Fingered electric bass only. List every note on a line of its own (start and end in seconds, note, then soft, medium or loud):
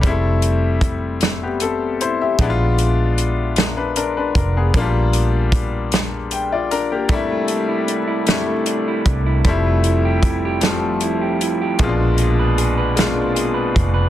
2.40 4.31 A#1 loud
4.36 4.71 F1 medium
4.75 7.10 A#1 loud
7.10 9.02 C2 loud
9.06 9.41 C2 loud
9.46 11.76 F1 medium
11.80 13.72 A#1 loud
13.77 14.09 F1 medium